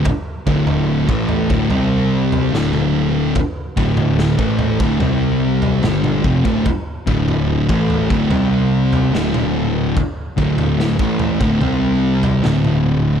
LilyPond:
<<
  \new Staff \with { instrumentName = "Distorted electric guitar" } { \clef bass \time 4/4 \key c \mixolydian \tempo 4 = 73 r8 <d, a, d>8. <a, e a>8 <d, a,>16 <c g c'>4 <d, a, d>4 | r8 <d, a, d>8. <a, e a>8 <d, a,>16 <c g c'>4 <g, d g>8 <f, c>16 <d, a,>16 | r8 <d, a, d>8. <a, e a>8 <d, a,>16 <c g c'>4 <d, a, d>4 | r8 <d, a, d>8. <a, e a>8 <d, a,>16 <c g c'>4 <d, a, d>4 | }
  \new Staff \with { instrumentName = "Distorted electric guitar" } { \clef bass \time 4/4 \key c \mixolydian r8 <d, a, d>8. <a, e a>8 <d, a,>16 <c g c'>4 <d, a, d>4 | r8 <d, a, d>8. <a, e a>8 <d, a,>16 <c g c'>4 <g, d g>8 <f, c>16 <d, a,>16 | r8 <d, a, d>8. <a, e a>8 <d, a,>16 <c g c'>4 <d, a, d>4 | r8 <d, a, d>8. <a, e a>8 <d, a,>16 <c g c'>4 <d, a, d>4 | }
  \new Staff \with { instrumentName = "Picked electric bass" } { \clef bass \time 4/4 \key c \mixolydian r8 d,,8. a,,8 d,,16 c,4 d,,4 | r8 d,,8. a,,8 d,,16 c,4 g,,8 f,,16 d,,16 | r8 d,,8. a,,8 d,,16 c,4 d,,4 | r8 d,,8. a,,8 d,,16 c,4 d,,4 | }
  \new DrumStaff \with { instrumentName = "Drums" } \drummode { \time 4/4 <bd tomfh>8 bd16 tomfh16 r16 bd16 tomfh16 bd16 tomfh8. tomfh16 sn16 toml8. | <bd tomfh>8 bd16 <tomfh toml>16 sn16 bd16 <tomfh toml>16 bd16 tomfh8. tomfh16 <sn toml>16 toml16 bd16 bd16 | <bd tomfh>8 bd16 tomfh16 r16 bd16 tomfh16 bd16 tomfh8. tomfh16 sn16 toml8. | <bd tomfh>8 bd16 <tomfh toml>16 sn16 bd16 <tomfh toml>16 bd16 tomfh8. tomfh16 <sn toml>16 toml8. | }
>>